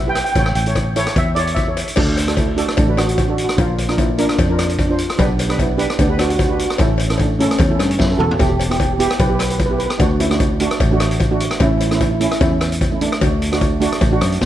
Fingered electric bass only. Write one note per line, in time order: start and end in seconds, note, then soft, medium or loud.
0.00 0.22 B1 medium
0.35 0.52 A1 loud
0.55 1.06 A1 medium
1.16 1.83 E2 medium
1.97 2.64 D2 loud
2.78 3.44 A1 medium
3.58 4.24 A#1 loud
4.39 5.05 F2 loud
5.19 5.85 B1 loud
5.99 6.65 D2 medium
6.79 7.46 A1 loud
7.59 7.76 E2 medium
7.79 7.97 G2 medium
8.00 8.18 F#2 medium
8.19 8.37 E2 medium
8.40 9.06 E1 loud
9.20 9.86 B1 loud
10.00 10.66 D2 loud
10.80 11.47 A1 loud
11.60 12.27 A1 loud
12.41 13.07 E2 loud
13.22 13.88 D2 loud
14.02 14.18 A1 medium
14.22 14.40 F#2 medium
14.42 14.45 E2 medium